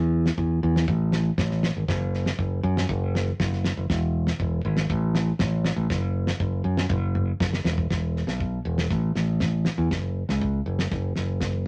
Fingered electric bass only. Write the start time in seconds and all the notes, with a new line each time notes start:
Already playing: E2
0.38 E2
0.63 E2
0.88 A1
1.38 A1
1.77 G#1
1.88 F#1
2.39 F#1
2.63 F#2
2.90 F#1
3.40 F#1
3.77 F#1
3.90 E1
4.40 E1
4.65 G#1
4.90 A1
5.40 A1
5.76 A1
5.90 F#1
6.41 F#1
6.64 F#2
6.90 F#1
7.40 F#1
7.64 E1
7.91 E1
8.27 B1
8.65 E1
8.91 A1
9.16 A1
9.78 E2
9.91 F#1
10.29 C#2
10.66 F#1
10.92 F#1
11.17 F#1